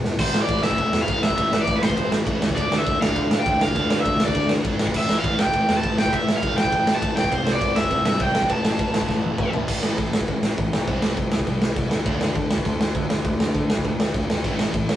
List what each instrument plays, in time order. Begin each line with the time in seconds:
0.02 picked electric bass E1, snare
0.18 picked electric bass A1, distorted electric guitar A2 E3 A3, overdriven electric guitar C5, kick, crash
0.33 picked electric bass A1, snare
0.42 overdriven electric guitar D5
0.49 picked electric bass A1, kick, ride
0.62 picked electric bass A1, distorted electric guitar E3 A3, overdriven electric guitar E5, snare
0.67 distorted electric guitar A2, kick
0.78 picked electric bass A1, kick, ride
0.92 picked electric bass E2, snare
1.02 overdriven electric guitar F5
1.08 picked electric bass A1, distorted electric guitar A2 E3 A3, kick, ride
1.23 picked electric bass A1, overdriven electric guitar E5, snare
1.30 kick
1.38 picked electric bass A1, distorted electric guitar A2 E3 A3, kick, ride
1.52 picked electric bass A1, snare
1.61 overdriven electric guitar D5
1.67 picked electric bass A1, kick, ride
1.76 overdriven electric guitar B4
1.82 picked electric bass A1, distorted electric guitar A2 E3 A3, overdriven electric guitar C5, snare
1.90 kick
1.97 picked electric bass A1, kick, ride
2.12 snare
2.26 picked electric bass A1, distorted electric guitar A2 E3, kick, ride
2.30 distorted electric guitar A3
2.42 picked electric bass C#2, snare
2.49 kick
2.56 picked electric bass D2, distorted electric guitar D3 A3 D4, overdriven electric guitar D5, kick, ride
2.71 picked electric bass D2, snare
2.78 overdriven electric guitar E5
2.87 picked electric bass D2, kick, ride
3.01 picked electric bass D2, distorted electric guitar D3 A3 D4, overdriven electric guitar F5, snare
3.09 kick
3.16 picked electric bass D2, kick, ride
3.30 picked electric bass A2, snare
3.40 overdriven electric guitar G5
3.44 picked electric bass D2, distorted electric guitar D3 A3 D4, kick, ride
3.61 picked electric bass D2, overdriven electric guitar F5, snare
3.68 kick
3.74 picked electric bass D2, distorted electric guitar D3 A3 D4, kick, ride
3.90 picked electric bass D2, snare
4.01 overdriven electric guitar E5
4.05 picked electric bass D2, kick, ride
4.20 picked electric bass D2, distorted electric guitar D3 A3 D4, snare
4.24 overdriven electric guitar D5, kick
4.35 picked electric bass D2, kick, ride
4.49 snare
4.63 picked electric bass G#1, distorted electric guitar D3 A3 D4, kick, ride
4.79 picked electric bass A1, distorted electric guitar A2 E3 A3, snare
4.87 kick
4.94 picked electric bass A1, overdriven electric guitar E5, kick, crash
5.09 picked electric bass A1, snare
5.19 distorted electric guitar A2, overdriven electric guitar F5
5.24 picked electric bass A1, distorted electric guitar E3 A3, kick, ride
5.39 picked electric bass A1, overdriven electric guitar G5, snare
5.46 kick
5.53 picked electric bass A1, kick, ride
5.68 picked electric bass E2, distorted electric guitar A2 E3 A3, snare
5.77 overdriven electric guitar A5
5.84 picked electric bass A1, kick, ride
5.98 picked electric bass A1, distorted electric guitar A2 E3 A3, overdriven electric guitar G5, snare
6.06 kick
6.13 picked electric bass A1, overdriven electric guitar E5, kick, ride
6.28 picked electric bass A1, snare
6.36 overdriven electric guitar F5
6.42 picked electric bass A1, distorted electric guitar A2 E3 A3, kick, ride
6.56 picked electric bass A1, overdriven electric guitar G5, snare
6.65 kick
6.72 picked electric bass A1, kick, ride
6.87 distorted electric guitar A2 E3 A3, snare
6.95 overdriven electric guitar A5
7.02 picked electric bass A1, kick, ride
7.16 picked electric bass A1, overdriven electric guitar G5, snare
7.24 kick
7.31 picked electric bass C2, distorted electric guitar C3 G3 C4, overdriven electric guitar C5, kick, ride
7.46 picked electric bass C2, snare
7.53 overdriven electric guitar D5
7.61 picked electric bass C2, kick, ride
7.75 picked electric bass C2, distorted electric guitar C3 G3 C4, overdriven electric guitar E5, snare
7.83 kick
7.90 picked electric bass C2, kick, ride
8.05 picked electric bass G2, overdriven electric guitar E5, snare
8.19 picked electric bass C2, distorted electric guitar C3 G3 C4, overdriven electric guitar G5, kick, ride
8.35 picked electric bass G1, snare
8.42 kick
8.48 picked electric bass A1, distorted electric guitar A2 E3 A3, overdriven electric guitar A5, kick, ride
8.65 picked electric bass A1, snare
8.79 picked electric bass A1, kick, ride
8.93 picked electric bass A1, distorted electric guitar A2 E3 A3, snare
9.01 kick
9.08 picked electric bass A1, kick, snare
9.24 high tom
9.38 picked electric bass A1, distorted electric guitar A2 E3 A3, kick, mid tom
9.53 picked electric bass A1, floor tom
9.68 picked electric bass A1, distorted electric guitar A2 E3 A3, kick, crash
9.83 picked electric bass A1, snare
9.98 picked electric bass A2, distorted electric guitar A2 E3, kick, crash
10.13 picked electric bass A1, snare
10.21 kick
10.28 picked electric bass A1, distorted electric guitar A2 E3, kick, crash
10.43 snare
10.58 picked electric bass A1, distorted electric guitar A2 E3, kick, crash
10.72 picked electric bass B1, snare
10.87 picked electric bass C2, distorted electric guitar C3 G3 C4, kick, crash
11.02 picked electric bass C2, snare
11.17 picked electric bass C3, distorted electric guitar C3 G3, kick, crash
11.32 picked electric bass C2, snare
11.39 kick
11.47 picked electric bass C2, distorted electric guitar C3 G3, kick, crash
11.62 snare
11.76 picked electric bass C2, distorted electric guitar C3 G3, kick, crash
11.91 picked electric bass D2, snare
12.05 picked electric bass D2, distorted electric guitar D3 A3 D4, kick, crash
12.21 picked electric bass D2, snare
12.35 distorted electric guitar D3 A3, picked electric bass D3, kick, crash
12.50 picked electric bass D2, snare
12.58 kick
12.65 picked electric bass D2, distorted electric guitar D3 A3, kick, crash
12.81 snare
12.95 picked electric bass D2, distorted electric guitar D3 A3, kick, crash
13.09 picked electric bass D2, snare
13.25 picked electric bass D2, distorted electric guitar D3 A3, kick, crash
13.40 picked electric bass D2, snare
13.54 picked electric bass D3, distorted electric guitar D3 A3, kick, crash
13.69 picked electric bass D2, snare
13.77 kick
13.85 picked electric bass D2, distorted electric guitar D3 A3, kick, crash
14.00 snare
14.14 picked electric bass D2, distorted electric guitar D3 A3, kick, crash
14.29 picked electric bass D2, snare
14.44 picked electric bass A1, distorted electric guitar A2 E3 A3, kick, crash
14.59 picked electric bass A1, snare
14.74 picked electric bass A2, distorted electric guitar A2 E3, kick, crash
14.89 picked electric bass A1, snare